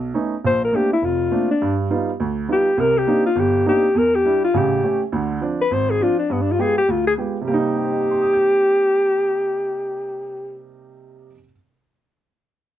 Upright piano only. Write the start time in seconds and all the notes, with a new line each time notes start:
Already playing: B1
0.14 A3 B3 C#4 D#4
0.44 A#1
0.72 A3 A#3 C4 D4
1.02 F1
1.31 A3 A#3 C4 D4
1.62 G2
1.90 G3 B3 D#4 F4
2.20 D2
2.48 G3 B3 D#4 F4
2.77 C2 C3
3.07 A#3 C4 D4 D#4
3.36 G1
3.66 A#3 C4 D4 D#4
3.95 E2
4.25 G3 D4 E4
4.54 A1 C#3
4.84 A3 C#4 G4
5.12 D2 D3
5.41 F3 C4 D4
5.71 G#1
6.00 F3 C4 D4
6.30 G2
6.58 G#3 B3 F4 G4
6.88 D2
7.18 G#3 B3 F4 G4
7.41 C3 G3
7.48 A#3 C4
7.54 D#4
7.76 G4
7.84 C5
7.92 D#5
8.01 G5
8.11 C6
8.22 D#6
8.33 G6